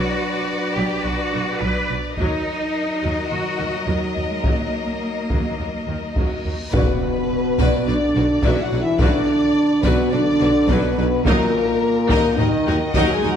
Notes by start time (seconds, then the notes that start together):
Already playing: F#3 D4 F#4 B4 D5
0.75 B1 F#3 G4
1.04 B1 F#3 F#4
1.32 B1 D3
1.60 B1 F#3 B4
1.90 B1 F#3
2.16 D#2 F#3 D#4 A#4 D#5, taiko
3.03 D#2 F#3
3.30 D#2 F#3 F#4
3.58 D#2 D#3
3.86 D#2 F#3
4.16 D#2 F#3
4.30 G#3
4.44 D#2 F#3 A#3, taiko, reverse cymbal
5.30 D#2 F#3, taiko
5.59 D#2 F#3
5.87 D#2 D#3
6.16 D#2 F#3, taiko
6.46 D#2 F#3
6.72 B1 B2 F#3 B3 F#4 B4 D5, taiko, impact
7.58 B1 B2 F#3 F#4 B4 D5, taiko
7.86 B1 B2 D3 F#3 D4 F#4 B4 D5
8.15 B1 B2 F#3 F#4 B4
8.43 B1 B2 E3 F#3 E4 F#4 B4 D5 E5, taiko
8.63 F#3 F#4 F#5
8.72 B1 B2 F#3 F#4 B4 D5
8.81 E3 E4 E5
8.99 B1 B2 D3 F#3 D4 F#4 B4 D5, taiko
9.83 B1 B2 F#3 B3 F#4 B4 D5, taiko
10.11 B1 B2 D3 F#3 D4 F#4 B4 D5
10.40 B1 B2 F#3 F#4 B4
10.68 B1 B2 F#3 B3 F#4 B4 D5, taiko
10.96 B1 B2 F#3 F#4 B4 D5
11.25 D#2 A#2 D#3 F#3 A#3 D#4 A#4 D#5, taiko
12.09 D#2 D#3 F#3 D#4 A#4 D#5, taiko
12.36 D#2 D#3 F#3 D#4 A#4 D#5, taiko low-mid
12.66 D#2 D#3 F#3 D#4 F#4 A#4
12.94 D#2 D#3 F#3 D#4 F#4 A#4 D#5 F#5, taiko
13.13 G#3 G#4 G#5
13.22 D#2 D#3 F#3 D#4 A#4 D#5
13.32 F#3 F#4 F#5